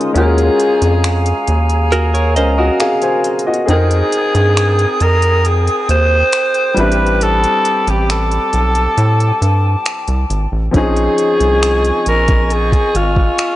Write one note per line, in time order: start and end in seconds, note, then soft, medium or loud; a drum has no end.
0.00 0.11 G#3 soft
0.00 0.12 C#4 medium
0.00 0.13 C#4 soft
0.00 0.15 D#4 soft
0.00 0.14 F4 soft
0.00 0.16 A#4 medium
0.00 0.12 G#5 medium
0.00 0.12 C6 medium
0.00 0.12 D#6 medium
0.00 closed hi-hat soft
0.13 0.50 D#2 loud
0.13 3.63 G#3 medium
0.13 2.31 C#4 medium
0.13 2.32 F4 medium
0.13 3.42 G#4 medium
0.13 3.43 F5 medium
0.13 3.45 G#5 medium
0.13 3.40 A#5 medium
0.13 closed hi-hat medium
0.17 2.33 F#4 medium
0.17 1.45 G#4 loud
0.17 2.34 A#4 medium
0.38 closed hi-hat soft
0.60 closed hi-hat medium
0.82 1.33 F2 medium
0.82 closed hi-hat medium
1.04 finger snap loud
1.04 closed hi-hat medium
1.26 closed hi-hat medium
1.47 2.38 D#2 medium
1.47 closed hi-hat medium
1.69 closed hi-hat soft
1.92 2.13 F#4 medium
1.92 2.13 A#4 medium
1.92 closed hi-hat medium
2.14 2.35 A#4 medium
2.14 2.35 C#5 medium
2.14 closed hi-hat soft
2.36 2.70 C#2 medium
2.36 2.57 C#4 soft
2.36 2.57 A#4 medium
2.36 2.57 C5 medium
2.36 2.57 D#5 medium
2.36 closed hi-hat medium
2.58 2.79 F#4 medium
2.58 3.65 F#4 medium
2.58 3.64 A#4 medium
2.58 2.79 D#5 medium
2.80 3.01 G#4 medium
2.80 3.01 F5 medium
2.80 finger snap loud
2.80 closed hi-hat medium
3.02 3.44 C5 medium
3.02 3.44 G#5 medium
3.02 closed hi-hat soft
3.24 closed hi-hat medium
3.39 closed hi-hat medium
3.47 3.89 F#4 medium
3.47 3.88 D#5 medium
3.54 closed hi-hat soft
3.66 4.03 F2 loud
3.66 6.73 C4 medium
3.66 6.73 D#4 medium
3.66 6.72 G#4 medium
3.66 6.74 G#4 medium
3.66 5.04 G#4 loud
3.66 6.74 A#4 medium
3.66 10.50 G5 medium
3.66 6.74 D#6 medium
3.66 closed hi-hat medium
3.70 6.75 A#4 medium
3.70 6.74 G5 medium
3.91 closed hi-hat soft
4.12 closed hi-hat medium
4.35 4.86 G2 medium
4.35 closed hi-hat soft
4.57 finger snap loud
4.57 closed hi-hat medium
4.79 closed hi-hat soft
5.00 5.69 F2 medium
5.00 5.48 A#4 medium
5.00 closed hi-hat medium
5.22 closed hi-hat soft
5.45 5.90 G#4 medium
5.45 closed hi-hat medium
5.67 closed hi-hat soft
5.89 6.23 D#2 medium
5.89 6.80 C5 loud
5.89 closed hi-hat medium
6.32 finger snap loud
6.32 closed hi-hat medium
6.54 closed hi-hat soft
6.74 7.46 A1 loud
6.74 10.25 G3 medium
6.74 6.83 B3 soft
6.74 10.26 D4 medium
6.74 8.52 B5 medium
6.74 10.42 D6 medium
6.74 closed hi-hat medium
6.79 10.29 C4 medium
6.79 10.27 E4 medium
6.79 7.24 B4 loud
6.79 10.28 B4 medium
6.92 closed hi-hat medium
7.06 closed hi-hat soft
7.21 7.91 A4 loud
7.21 closed hi-hat medium
7.44 closed hi-hat soft
7.65 closed hi-hat medium
7.87 8.39 A1 medium
7.87 8.10 G4 medium
7.87 closed hi-hat soft
8.10 9.83 A4 medium
8.10 finger snap loud
8.10 closed hi-hat medium
8.31 closed hi-hat soft
8.53 8.88 B1 medium
8.53 10.47 A5 medium
8.53 closed hi-hat medium
8.75 closed hi-hat medium
8.98 9.32 A2 loud
8.98 closed hi-hat medium
9.20 closed hi-hat soft
9.42 9.76 G2 medium
9.42 closed hi-hat medium
9.86 finger snap loud
9.86 closed hi-hat medium
10.07 10.25 C2 medium
10.07 closed hi-hat soft
10.30 10.47 G#1 medium
10.30 closed hi-hat medium
10.52 10.69 A1 medium
10.71 11.08 A#1 loud
10.71 13.56 F3 medium
10.71 13.56 C4 medium
10.71 13.56 C#4 medium
10.71 13.56 D#5 medium
10.71 13.56 G#5 medium
10.71 13.56 C#6 medium
10.71 kick loud
10.71 closed hi-hat medium
10.76 13.56 D#4 medium
10.76 12.03 G#4 loud
10.76 13.56 G#4 medium
10.96 closed hi-hat soft
11.18 closed hi-hat medium
11.40 11.92 C2 medium
11.40 closed hi-hat medium
11.63 finger snap loud
11.63 closed hi-hat medium
11.84 closed hi-hat soft
12.06 12.75 A#1 medium
12.06 12.45 A#4 loud
12.06 closed hi-hat medium
12.28 kick loud
12.28 closed hi-hat soft
12.45 12.54 A#4 medium
12.50 12.98 G#4 loud
12.50 closed hi-hat medium
12.72 kick medium
12.72 closed hi-hat soft
12.95 13.29 G#1 loud
12.95 13.56 F4 loud
12.95 closed hi-hat medium
13.16 kick medium
13.38 finger snap loud
13.38 closed hi-hat medium